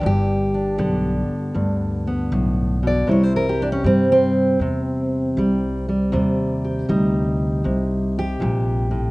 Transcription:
Already playing: G3
0.01 G1 G2
0.06 G4
0.54 D4
0.78 B1 D3 B3
1.29 muted upright bass stroke
1.54 D2 G2
2.07 B3
2.32 B1 A2
2.83 B2
2.87 D5
3.07 C2 C3 G3 E4
3.11 C#5
3.23 C5
3.36 A#4
3.49 G4
3.62 D4
3.72 C#4
3.84 G2 G3 C4
4.12 C4
4.59 E2 C3
5.37 C2 G3
5.89 G3
6.12 D#2 C3 G3
6.64 G4
6.89 D2 G3 D#4
7.64 C2 C3
8.19 G4
8.40 A#1 A#2
8.91 A2

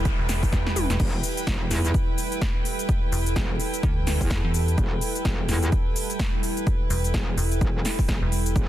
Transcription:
Already playing: E1 G3 E4 A4 B4 G5, noise sweep
0.05 kick, closed hi-hat, shaker
0.19 E1
0.29 snare, open hi-hat, shaker
0.43 kick, open hi-hat, shaker
0.53 E1, kick, snare, closed hi-hat, shaker
0.67 snare
0.76 open hi-hat, mid tom, shaker
0.90 E1, snare, closed hi-hat, shaker
1.00 E1 A4, kick, closed hi-hat, crash, shaker
1.23 open hi-hat, shaker
1.37 closed hi-hat, shaker
1.47 E1, kick, snare, closed hi-hat, shaker
1.71 E2, snare, open hi-hat, shaker
1.85 closed hi-hat, shaker
1.94 kick, closed hi-hat, shaker
2.18 open hi-hat, shaker
2.32 closed hi-hat, shaker
2.42 kick, snare, closed hi-hat, shaker
2.65 open hi-hat, shaker
2.79 closed hi-hat, shaker
2.89 kick, closed hi-hat, shaker
3.12 E1, open hi-hat, shaker
3.26 closed hi-hat, shaker
3.36 E1, kick, snare, closed hi-hat, shaker
3.60 open hi-hat, shaker
3.74 closed hi-hat, shaker
3.83 D2, kick, closed hi-hat, shaker
4.07 snare, open hi-hat, shaker
4.21 E2, kick, open hi-hat, shaker
4.31 kick, snare, shaker
4.44 E2
4.54 open hi-hat, shaker
4.68 closed hi-hat, shaker
4.78 E1, kick, closed hi-hat, shaker
5.01 open hi-hat, shaker
5.15 closed hi-hat, shaker
5.25 E1, kick, snare, closed hi-hat, shaker
5.49 E2, snare, open hi-hat, shaker
5.63 closed hi-hat, shaker
5.72 kick, closed hi-hat, shaker
5.96 open hi-hat, shaker
6.10 closed hi-hat, shaker
6.20 kick, snare, closed hi-hat, shaker
6.43 open hi-hat, shaker
6.57 closed hi-hat, shaker
6.67 kick, closed hi-hat, shaker
6.90 E1, open hi-hat, shaker
7.04 closed hi-hat, shaker
7.14 E1, kick, snare, closed hi-hat, shaker
7.38 E1, open hi-hat, shaker
7.52 closed hi-hat, shaker
7.61 E1, kick, closed hi-hat, shaker
7.85 snare, open hi-hat, shaker
7.99 kick, open hi-hat, shaker
8.09 E1, kick, snare, shaker
8.22 E1
8.32 open hi-hat, shaker
8.46 closed hi-hat, shaker
8.56 E1 G4, kick, closed hi-hat, shaker

